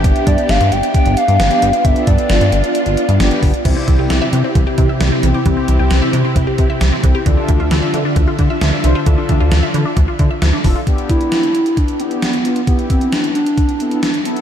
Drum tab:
CC |----------------|----------------|x---------------|----------------|
HH |xxxxxxxxxxxxxxxx|xxxxxxxxxxxxxxox|x-x-x-x-x-x-x-x-|x-x-x-x-x-x-x-x-|
SD |----o-------o---|----o-------o---|----o-------o---|----o-------o---|
BD |o-o-----o-------|o-o-----------o-|o-o-----o-o-----|o-------o-o---o-|

CC |----------------|----------------|----------------|----------------|
HH |x-x-x-x-x-x-x-x-|x-x-x-x-x-x-x-o-|xxxxxxxxxxxxxxxx|xxxxxxxxxxxxxxxx|
SD |----o-------o---|----o-------o---|----o-------o---|----o-------o---|
BD |o-o-----o-o-----|o-o-----o-o---o-|o-o-----o-------|o-o-----o-------|